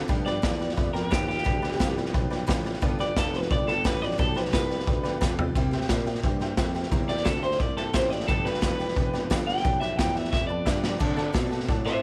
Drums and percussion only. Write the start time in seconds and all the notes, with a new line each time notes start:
0.09 kick, snare
0.27 snare
0.43 kick, snare, hi-hat pedal
0.61 snare
0.69 snare
0.78 kick, snare
0.95 snare
1.12 kick, snare, hi-hat pedal
1.30 snare
1.38 snare
1.46 kick, snare
1.64 snare
1.72 snare
1.80 kick, snare, hi-hat pedal
1.97 snare
2.06 snare
2.14 kick, snare
2.32 snare
2.49 kick, snare, hi-hat pedal
2.66 snare
2.74 snare
2.82 kick, snare
3.00 snare
3.17 kick, snare, hi-hat pedal
3.34 snare
3.42 snare
3.51 kick, snare
3.68 snare
3.85 kick, snare, hi-hat pedal
4.03 snare
4.11 snare
4.19 kick, snare
4.36 snare
4.45 snare
4.53 kick, snare, hi-hat pedal
4.71 snare
4.80 snare
4.87 kick, snare
5.05 snare
5.22 kick, snare, hi-hat pedal
5.39 floor tom
5.55 kick, snare
5.72 snare
5.81 snare
5.89 kick, snare, hi-hat pedal
6.06 snare
6.15 snare
6.23 kick, snare
6.41 snare
6.57 kick, snare, hi-hat pedal
6.75 snare
6.83 snare
6.91 kick, snare
7.09 snare
7.17 snare
7.26 kick, snare, hi-hat pedal
7.43 snare
7.51 snare
7.59 kick, snare
7.77 snare
7.94 kick, snare, hi-hat pedal
8.12 snare
8.20 snare
8.28 kick, snare
8.46 snare
8.54 snare
8.62 kick, snare, hi-hat pedal
8.80 snare
8.88 snare
8.96 kick, snare
9.14 snare
9.31 kick, snare, hi-hat pedal
9.49 snare
9.57 snare
9.65 kick, snare
9.82 snare
9.99 kick, snare, hi-hat pedal
10.16 snare
10.25 snare
10.33 kick, snare
10.67 kick, snare, hi-hat pedal
10.84 snare
11.00 kick, snare, crash
11.18 snare
11.34 kick, snare, hi-hat pedal
11.52 snare
11.60 snare
11.69 kick, snare
11.86 snare